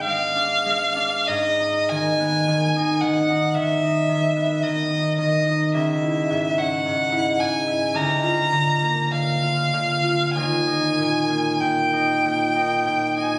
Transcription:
0.00 1.27 G#2 soft
0.00 2.19 B3 soft
0.00 0.35 D4 soft
0.05 0.64 G#3 soft
0.05 1.28 F5 medium
0.36 0.95 D4 soft
0.65 4.55 G#3 soft
0.96 1.33 D4 soft
1.27 5.18 G#2 soft
1.27 1.90 D#5 medium
1.60 2.75 D#4 soft
1.89 2.47 D#3 soft
1.89 3.02 G#5 medium
2.20 4.35 B3 soft
2.48 3.01 D#3 soft
2.76 3.29 D#4 soft
3.00 3.54 D#3 soft
3.00 3.56 F#5 medium
3.30 3.82 D#4 soft
3.55 4.08 D#3 soft
3.55 4.64 E5 medium
3.83 4.89 D#4 soft
4.09 4.62 D#3 soft
4.36 5.80 B3 soft
4.62 5.17 D#3 soft
4.62 5.18 D#5 medium
4.90 5.45 D#4 soft
5.18 5.80 D#3 soft
5.18 5.74 D#5 medium
5.46 5.80 D#4 soft
5.74 8.00 C#2 soft
5.74 6.60 E5 medium
6.03 7.11 E4 soft
6.30 6.85 G#2 soft
6.58 8.00 C#4 soft
6.58 7.42 F#5 medium
6.86 7.39 G#2 soft
7.12 7.66 E4 soft
7.40 8.00 G#2 soft
7.40 7.97 G#5 medium
7.68 8.00 E4 soft
7.94 10.40 D2 soft
7.94 9.13 A#5 medium
8.23 9.41 F4 soft
8.52 9.11 D3 soft
8.82 11.29 A#3 soft
9.11 9.72 D3 soft
9.11 10.34 F5 medium
9.42 10.03 F4 soft
9.73 10.41 D3 soft
10.04 10.41 F4 soft
10.35 13.39 D#2 soft
10.35 11.62 G#5 medium
10.67 11.92 D#4 soft
10.99 11.60 A#2 soft
11.30 13.39 A#3 soft
11.60 12.23 A#2 soft
11.60 13.16 G5 soft
11.93 12.54 D#4 soft
12.25 12.84 A#2 soft
12.55 13.16 D#4 soft
12.86 13.39 A#2 soft
13.17 13.39 D#4 soft
13.17 13.39 G#5 soft

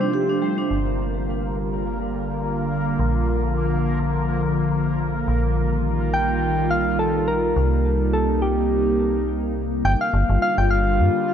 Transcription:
0.00 0.68 C3 medium
0.00 0.72 C4 medium
0.00 0.10 D4 medium
0.00 0.42 C5 medium
0.00 0.72 C5 medium
0.14 0.25 G4 medium
0.29 0.38 D4 medium
0.42 0.53 G3 medium
0.58 0.67 D4 medium
0.71 2.97 G1 medium
0.71 5.24 D3 medium
0.71 2.97 G3 medium
0.71 7.52 A#3 medium
0.71 9.86 A#3 medium
0.71 5.24 F4 medium
0.71 9.86 A#4 medium
2.99 5.25 A#1 medium
2.99 5.25 F3 medium
5.28 7.54 A#1 medium
5.28 7.54 D#3 medium
5.28 9.81 G3 medium
5.28 7.54 F4 medium
6.14 6.72 G5 loud
6.71 7.01 F5 loud
6.99 7.29 A4 medium
7.28 8.13 A#4 loud
7.56 9.82 C2 medium
7.56 9.83 C3 medium
7.56 9.83 A#3 medium
7.56 9.83 D#4 medium
8.13 8.43 A4 medium
8.42 9.56 G4 medium
9.85 9.95 G1 loud
9.85 11.34 D3 medium
9.85 11.34 G3 medium
9.85 11.34 A#3 medium
9.85 11.34 F4 medium
9.85 9.92 G5 loud
10.01 10.39 F5 loud
10.14 10.24 G1 medium
10.29 10.38 G1 medium
10.42 10.57 F5 loud
10.58 11.01 G1 medium
10.58 10.72 G5 loud
10.71 11.34 F5 loud
10.99 11.09 G2 loud

